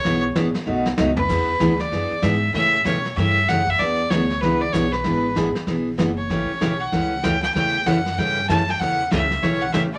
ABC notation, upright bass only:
X:1
M:4/4
L:1/8
Q:"Swing" 1/4=192
K:A
V:1 name="Upright bass" clef=bass
B,,,2 A,,, z B,,,2 C,,2 | E,,2 D,,2 F,, z G,,2 | A,,2 B,,2 =G,,2 F,,2 | E,,2 D,,2 C,,2 B,,,2 |
G,,,2 A,,, z B,,,2 F,,,2 | A,,, z B,,,2 C,,2 D,,2 | E,,2 F,,2 =G,,2 F,,2 | E,,2 C,,2 B,,,2 A,,,2 |]